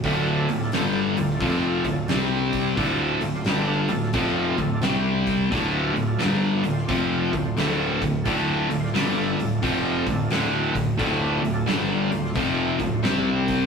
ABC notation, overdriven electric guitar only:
X:1
M:4/4
L:1/8
Q:"Swing" 1/4=88
K:Dm
V:1 name="Overdriven electric guitar" clef=bass
[D,,A,,D,] [D,,A,,] [G,,D,G,] [D,,A,,] [F,,C,F,] [D,,A,,] [C,G,C]2 | [D,,A,,D,] [D,,A,,] [G,,D,G,] [D,,A,,] [F,,C,F,] [D,,A,,] [C,G,C]2 | [D,,A,,D,] [D,,A,,] [G,,D,G,] [D,,A,,] [F,,C,F,] [D,,A,,] [D,,A,,D,] [D,,A,,] | [D,,A,,D,] [D,,A,,] [G,,D,G,] [D,,A,,] [F,,C,F,] [D,,A,,] [D,,A,,D,] [D,,A,,] |
[D,,A,,D,] [D,,A,,] [G,,D,G,] [D,,A,,] [F,,C,F,] [D,,A,,] [C,G,C]2 |]